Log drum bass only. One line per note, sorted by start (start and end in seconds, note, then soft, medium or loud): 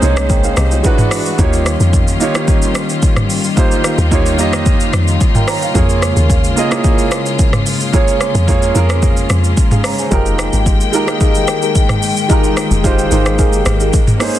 0.02 0.53 C2 medium
0.57 0.82 C2 medium
1.39 1.77 D#2 loud
1.80 2.17 F2 medium
3.98 4.40 D#2 loud
4.39 4.89 F2 loud
4.93 5.18 F2 medium
5.75 6.13 F2 loud
6.17 6.53 D#2 medium
8.35 8.72 F2 loud
8.75 9.26 F2 loud
9.30 9.55 F2 medium
10.12 10.49 F1 loud
10.53 10.90 G#1 medium
12.71 13.08 F1 medium
13.11 13.62 G#1 medium
13.66 13.91 G#1 loud